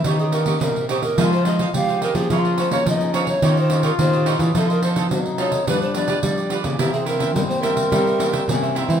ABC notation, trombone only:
X:1
M:4/4
L:1/16
Q:1/4=107
K:Fm
V:1 name="Trombone"
E6 z2 F4 G4 | F4 E3- E/2 =E/2 F8 | F4 E4 =D6 z2 | C12 D2 C2 |]